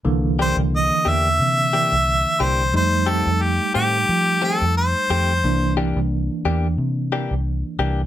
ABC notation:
X:1
M:4/4
L:1/16
Q:"Swing 16ths" 1/4=89
K:Cmix
V:1 name="Harmonica"
z2 c2 _e2 =e8 c2 | c2 A2 G2 G4 A2 c4- | c2 z12 z2 |]
V:2 name="Clean electric guitar"
z2 [E,B,DG]2 z2 [E,B,DG]2 z2 [E,B,DG]2 z2 [E,B,DG]2 | z2 [_E,A,CG]2 z2 [E,A,CG]2 z2 [E,A,CG]2 z2 [E,A,CG]2 | z2 [E,B,DG]2 z2 [E,B,DG]2 z2 [E,B,DG]2 z2 [E,B,DG]2 |]
V:3 name="Tine electric piano"
[D,E,B,]16 | [G,A,_E]16 | [E,B,D]16 |]
V:4 name="Fingered electric bass" clef=bass
C,,3 C,,2 z E,,2 C,3 C,,2 z C,,2 | F,,3 F,,2 z A,,2 F,3 F,,2 z F,,2 | C,,3 C,,2 z E,,2 C,3 C,,2 z C,,2 |]